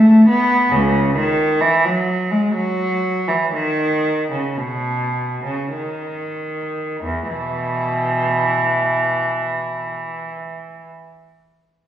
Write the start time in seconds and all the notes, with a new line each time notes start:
Already playing: A3
0.29 B3
0.71 C#2 C#3
1.16 D#3
1.61 E3
1.85 F#3
2.31 G#3
2.54 F#3
3.28 E3
3.53 D#3
4.31 C#3
4.57 B2
5.44 C#3
5.74 D#3
7.04 E2
7.28 B2 E3